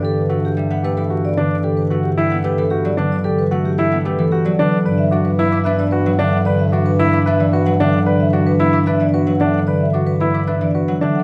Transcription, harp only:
X:1
M:3/4
L:1/16
Q:1/4=112
K:Bphr
V:1 name="Harp"
[D,E,G,A,B,D]2 A,2 G, B, A, E,3 D,2- | D,2 A,2 G, B, A, E,2 F, D,2- | D,2 A,2 G, B, A, E,2 F, D,2 | z2 D2 B, E D E,2 F, D,2- |
D,2 D2 B, E D E,2 F, D,2- | D,2 D2 B, E D E,2 F, D,2- | D,2 D2 B, E D E,2 F, D,2 |]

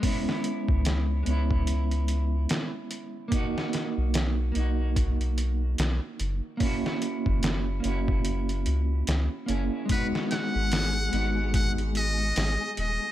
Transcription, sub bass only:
X:1
M:4/4
L:1/16
Q:"Swing 16ths" 1/4=73
K:G#m
V:1 name="Sub bass" clef=bass
z3 C,,3 C,,6 z4 | z3 B,,,3 B,,,6 B,,, z F,,, z | z3 F,,,3 F,,,4 C,,2 C,, z F,,, z | z3 G,,,3 G,,,6 G,,, z D,,, z |]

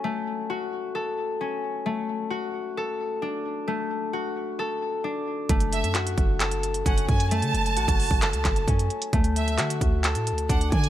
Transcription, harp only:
X:1
M:4/4
L:1/8
Q:1/4=132
K:F#m
V:1 name="Harp"
[A,CFA]2 F2 A2 C2 | A,2 F2 A2 D2 | A,2 F2 A2 D2 | A,2 F2 A2 C2 |
A,2 F2 A2 C2 | A,2 F2 A2 D2 |]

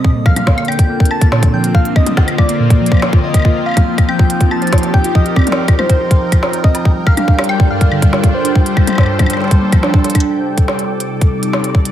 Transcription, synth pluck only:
X:1
M:4/4
L:1/16
Q:1/4=141
K:Cdor
V:1 name="Synth pluck"
B,, B, F, B, z B, B, F B, B z B, B,, B, F, B, | z B, B, F B, B z B, B,, B, F, B, z F B B | F f z F F, F C F z F F c F f z F | F, F C F z F F c F f z F F, F C F |
z G, G, D G, G z G, G,, G, D, z2 G, G, D | G, G z G, G,, G, D, G, z G, B, F, D G, z D | z16 |]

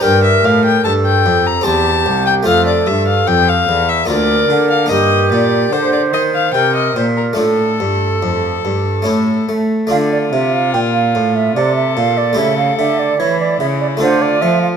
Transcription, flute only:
X:1
M:3/4
L:1/16
Q:1/4=73
K:Dm
V:1 name="Flute"
B4 A4 G4 | A6 z2 B4 | G4 c4 B4 | A8- A2 z2 |
f d e f g f2 e d e f d | e f e d ^c d e d =c d e f |]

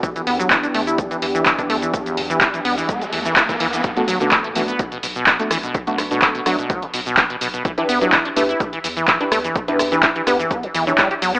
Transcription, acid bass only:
X:1
M:4/4
L:1/16
Q:1/4=126
K:Bm
V:1 name="Acid bass" clef=bass
E, E, B, F, E, D A, E E, E, E, E, E, D A, E, | B, E,, E, E, E E, B, E, B, E, E, E, E E, E, E, | B,, B,, F, D, B,, A, E, B, B,, B,, B,, B,, z A, E, B,, | F, B,,, B,, B,, B, B,, F, B,, F, B,, B,, B,, B, B,, B,, B,, |
E, E, B, F, E, D A, E E, E, E, E, z D A, E, | B, E,, E, E, E E, B, E, B, E, E, E, G, G F, B, |]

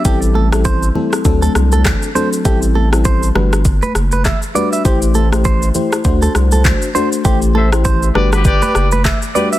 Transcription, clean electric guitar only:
X:1
M:4/4
L:1/16
Q:"Swing 16ths" 1/4=100
K:Ador
V:1 name="Clean electric guitar"
G z A z c2 z3 A z A z2 c z | G z A z c2 z3 B z B e z d e | G z A z c2 z3 A z A z2 c z | G z A z c2 z3 B z B e z d e |]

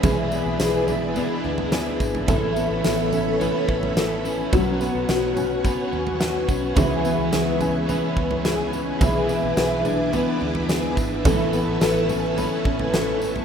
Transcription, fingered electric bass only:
X:1
M:4/4
L:1/16
Q:1/4=107
K:E
V:1 name="Fingered electric bass" clef=bass
B,,,3 B,,, B,,,4- B,,, z =D,,4 G,,,2 | A,,,3 A,,, A,,,4- A,,, z A,,,6 | B,,,3 B,,, B,,,4- B,,, z D,,4 B,,,2 | C,,3 C,, C,,4- C,, z C,,6 |
B,,,3 B,,, B,,,4- B,,, z =D,,4 G,,,2 | A,,,3 A,,, A,,,4- A,,, z A,,,6 |]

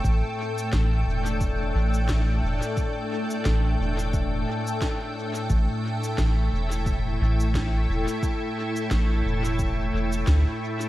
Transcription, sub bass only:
X:1
M:4/4
L:1/8
Q:"Swing 16ths" 1/4=88
K:G
V:1 name="Sub bass" clef=bass
A,,, z A,,, E,,,2 A,,,2 E,,, | z2 A,,, E,,,2 z3 | A,,, z A,,, E,,,2 A,,,2 E,,, | z2 A,,, E,,,2 E,,, D,, z |]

